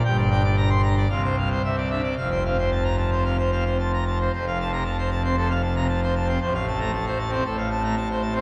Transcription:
<<
  \new Staff \with { instrumentName = "Pipe organ" } { \time 4/4 \key f \major \tempo 4 = 115 g''16 d''16 g''16 d''16 bes''16 c'''16 bes''16 d''16 f''16 c''16 f''16 c''16 e''16 d''16 e''16 d''16 | f''16 c''16 f''16 c''16 a''16 bes''16 a''16 c''16 f''16 c''16 f''16 c''16 a''16 bes''16 a''16 c''16 | c''16 f''16 a''16 bes''16 a''16 c''16 a''16 c''16 a'16 f''16 a''16 bes''16 a''16 c''16 a''16 c''16 | c''16 f''16 a''16 bes''16 a''16 c''16 a''16 c''16 a'16 f''16 a''16 bes''16 a''16 c''16 a''16 c''16 | }
  \new Staff \with { instrumentName = "Pipe organ" } { \clef bass \time 4/4 \key f \major << { g,8 d'16 r4 r16 c4 c8 d'16 r16 | f,8 c'16 r4 r16 c16 r16 c'16 r4 r16 | \tuplet 3/2 { f,4 c8 r4 c'8 c8 r8 c8 r4 c'8 } | \tuplet 3/2 { a,4 a8 r4 c'8 a,4 a8 r4 c'8 } | } \\ { g,,2 c,4 c,4 | f,,1 | f,,1 | a,,2 a,,2 | } >> }
>>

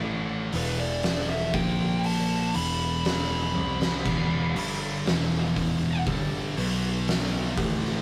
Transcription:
<<
  \new Staff \with { instrumentName = "Lead electric guitar" } { \time 4/4 \key b \minor \tempo 4 = 60 r8 b'16 d''8 e''16 g''8 a''8 b''8 b''4~ | b''2 r2 | }
  \new Staff \with { instrumentName = "Distorted electric guitar" } { \clef bass \time 4/4 \key b \minor <a, e a>8 <e, b, e>4 <ais, eis ais>4 <e, b, e>4 <c g c'>8 | <e, b, e>8 <g, d g>8 <e, b, e>4 <g, d g>8 <b, fis b>4 <a, e a>8 | }
  \new Staff \with { instrumentName = "Distorted electric guitar" } { \clef bass \time 4/4 \key b \minor <a, e a>8 <e, b, e>4 <ais, eis ais>4 <e, b, e>4 <c g c'>8 | <e, b, e>8 <g, d g>8 <e, b, e>4 <g, d g>8 <b, fis b>4 <a, e a>8 | }
  \new Staff \with { instrumentName = "Picked electric bass" } { \clef bass \time 4/4 \key b \minor a,,8 e,,4 ais,,4 e,,4 c,8 | e,,8 g,,8 e,,4 g,,8 b,,4 a,,8 | }
  \new DrumStaff \with { instrumentName = "Drums" } \drummode { \time 4/4 r8 hho8 <hho sn>8 <hho bd>8 hho8 hho8 <hho sn>8 tommh16 sn16 | <cymc bd>8 hho8 <hho sn>8 <hho bd>8 <hho bd>8 hho8 <hho sn>8 <hho bd>16 sn16 | }
>>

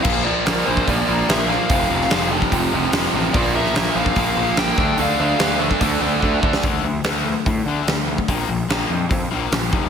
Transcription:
<<
  \new Staff \with { instrumentName = "Lead electric guitar" } { \time 4/4 \key bes \lydian \tempo 4 = 146 f''8 d''4 c''8 d''4 e''8 f''8~ | f''4. r2 r8 | d''8 e''4 f''4. g''4 | f''4. r2 r8 |
r1 | r1 | }
  \new Staff \with { instrumentName = "Overdriven electric guitar" } { \clef bass \time 4/4 \key bes \lydian <bes, f bes>8 <bes, f bes>8 <bes, f bes>8 <bes, f bes>8 <bes, f bes>8 <bes, f bes>8 <bes, f bes>8 <bes, f bes>8 | <f, c f>8 <f, c f>8 <f, c f>8 <f, c f>8 <f, c f>8 <f, c f>8 <f, c f>8 <f, c f>8 | <bes, f bes>8 <bes, f bes>8 <bes, f bes>8 <bes, f bes>8 <bes, f bes>8 <bes, f bes>8 <bes, f bes>8 <d a d'>8 | <d a d'>8 <d a d'>8 <d a d'>8 <d a d'>8 <d a d'>8 <d a d'>8 <d a d'>8 <d a d'>8 |
<d a d'>8 <d a>8 <d a d'>8 <d a>8 <d a>8 <d a d'>8 <d a>8 <d a>8 | <bes, f bes>8 <bes, f>8 <bes, f bes>8 <bes, f>8 <bes, f>8 <bes, f bes>8 <bes, f>8 <f, c f>8 | }
  \new Staff \with { instrumentName = "Overdriven electric guitar" } { \clef bass \time 4/4 \key bes \lydian <bes, f bes>8 <bes, f bes>8 <bes, f bes>8 <bes, f bes>8 <bes, f bes>8 <bes, f bes>8 <bes, f bes>8 <bes, f bes>8 | <f, c f>8 <f, c f>8 <f, c f>8 <f, c f>8 <f, c f>8 <f, c f>8 <f, c f>8 <f, c f>8 | <bes, f bes>8 <bes, f bes>8 <bes, f bes>8 <bes, f bes>8 <bes, f bes>8 <bes, f bes>8 <bes, f bes>8 <d a d'>8 | <d a d'>8 <d a d'>8 <d a d'>8 <d a d'>8 <d a d'>8 <d a d'>8 <d a d'>8 <d a d'>8 |
r1 | r1 | }
  \new Staff \with { instrumentName = "Picked electric bass" } { \clef bass \time 4/4 \key bes \lydian bes,,4 bes,,8 bes,,8 bes,,8 bes,,8 bes,,4 | f,,8 f,,8 f,,4 f,,8 f,,8 f,,8 a,,8 | bes,,4 bes,,8 bes,,8 bes,,8 bes,,8 bes,,8 d,8 | d,8 d,8 d,4 d,8 d,8 d,8 d,8 |
d,8 d,8 d,4 a,8 d8 d,4 | bes,,8 bes,,8 bes,,8 f,8 f,8 bes,,8 bes,,8 f,,8 | }
  \new DrumStaff \with { instrumentName = "Drums" } \drummode { \time 4/4 <cymc bd>4 <hho sn>8. bd16 <hho bd>4 <hho sn>8 sn8 | <hho bd>8. sn16 <hho sn>8. bd16 <hho bd>4 <hho sn>4 | <hho bd>8. sn16 <hho sn>8. bd16 <hho bd>4 <hho sn>8 <bd sn>8 | hho4 <hho sn>8. bd16 <hho bd>4 bd8 bd16 sn16 |
<hho bd>4 <hho sn>4 <hho bd>4 <hho sn>8. bd16 | <hho bd>4 <hho sn>4 <hho bd>4 <hho sn>8 bd8 | }
>>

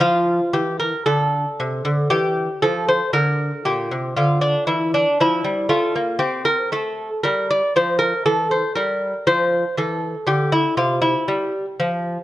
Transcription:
<<
  \new Staff \with { instrumentName = "Lute" } { \time 3/4 \key f \major \tempo 4 = 59 f'8 g'16 bes'16 a'4 g'8 a'16 c''16 | bes'8 g'8 f'16 d'16 e'16 d'16 e'8 f'8 | g'16 bes'16 a'8 bes'16 d''16 c''16 bes'16 a'16 c''16 bes'8 | c''8 a'8 g'16 e'16 f'16 e'8 r8. | }
  \new Staff \with { instrumentName = "Lute" } { \clef bass \time 3/4 \key f \major f8 e8 d8 c16 d16 e8 f8 | d8 bes,16 c16 d8 e8 f16 g16 a16 bes16 | c'8 a8 g8 f8 e8 g8 | f8 e8 d8 c8 g8 f8 | }
>>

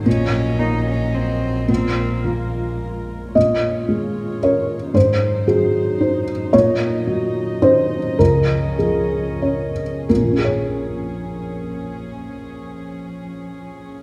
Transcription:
<<
  \new Staff \with { instrumentName = "String section" } { \time 3/4 \key bes \minor \tempo 4 = 108 << { ees''2. | bes'2. | des''2. | c''2. |
ees''2.~ | ees''2. | aes'2.~ | aes'2. | } \\ { <ges bes>2. | <aes f'>2. | <aes f'>2. | <ges ees'>2.~ |
<ges ees'>2. | <f des'>2. | <f des'>2.~ | <f des'>2. | } >> }
  \new Staff \with { instrumentName = "Felt piano" } { \time 3/4 \key bes \minor r2. | r2. | ees''2 des''4 | c''4 aes'4. r8 |
des''2 c''4 | bes'4 aes'4. r8 | <bes,, bes, f des' aes' bes' des''>2.~ | <bes,, bes, f des' aes' bes' des''>2. | }
  \new Staff \with { instrumentName = "Felt piano" } { \clef bass \time 3/4 \key bes \minor bes,4 bes2 | bes,4 f2 | bes,4 aes4 <des' bes'>4 | aes,4 ges4 <ees' c''>4 |
bes,4 ges4 <des' ees'>4 | des,4 f4 <des' des''>4 | r2. | r2. | }
  \new Staff \with { instrumentName = "Cello" } { \time 3/4 \key bes \minor des'4 ees'8 des'8 c'4 | c'4 bes4 r4 | r2. | r2. |
r2. | r2. | r2. | r2. | }
  \new Staff \with { instrumentName = "Double bass" } { \clef bass \time 3/4 \key bes \minor bes,,2.~ | bes,,2. | r2. | r2. |
r2. | r2. | r2. | r2. | }
>>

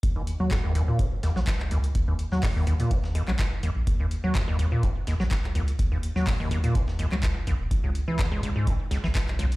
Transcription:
<<
  \new Staff \with { instrumentName = "Acid bass" } { \clef bass \time 4/4 \key ees \minor \tempo 4 = 125 r16 ees,16 r16 ges16 ees,16 ees,16 ees,16 bes,16 ees,16 r16 ees,16 ges16 r8 ees,16 r16 | r16 ees,16 r16 ges16 ees,16 ees,16 ees,16 bes,16 ees,16 r16 ees,16 ges16 r8 ees,16 r16 | r16 ees,16 r16 ges16 ees,16 ees,16 ees,16 bes,16 ees,16 r16 ees,16 ges16 r8 ees,16 r16 | r16 ees,16 r16 ges16 ees,16 ees,16 ees,16 bes,16 ees,16 r16 ees,16 ges16 r8 ees,16 r16 |
r16 des,16 r16 fes16 des,16 des,16 des,16 aes,16 des,16 r16 des,16 fes16 r8 des,16 r16 | }
  \new Staff \with { instrumentName = "Sub bass" } { \clef bass \time 4/4 \key ees \minor ees,8 r16 ees,4 r16 ees,,16 r16 ees,16 bes,,16 r16 des,8 r16 | ees,8 r16 ees,4 r8 ees,16 r16 bes,,16 r8. bes,,16 | ees,8 r16 ees,4 r16 ees,,16 r16 ees,16 bes,,16 r16 des,8 r16 | ees,8 r16 ees,4 r8 ees,16 des,8. r16 bes,,16 ees,,16 |
des,8 r16 des,4 r16 aes,,16 r16 des,16 aes,,16 r16 ces,8 r16 | }
  \new DrumStaff \with { instrumentName = "Drums" } \drummode { \time 4/4 <hh bd>8 hh8 <hc hh bd sn>8 hh8 <hh bd>8 <hh sn>16 sn16 <hc hh bd sn>16 hc16 hh16 hh16 | <hh bd>8 hh16 sn16 <hc hho bd sn>8 hh16 hh16 <hh bd>16 sn16 hh16 hc16 <hc hh bd sn>8 hh8 | <hh bd>8 hh8 <hc hh bd sn>8 hh8 <hh bd>8 <hh sn>16 sn16 <hc hh bd sn>16 hc16 hh16 hh16 | <hh bd>8 hh16 sn16 <hc hho bd sn>8 hh16 hh16 <hh bd>16 sn16 hh16 hc16 <hc hh bd sn>8 hh8 |
<hh bd>8 hh8 <hc hh bd sn>8 hh8 <hh bd>8 <hh sn>16 sn16 <hc hh bd sn>16 hc16 hh16 hh16 | }
>>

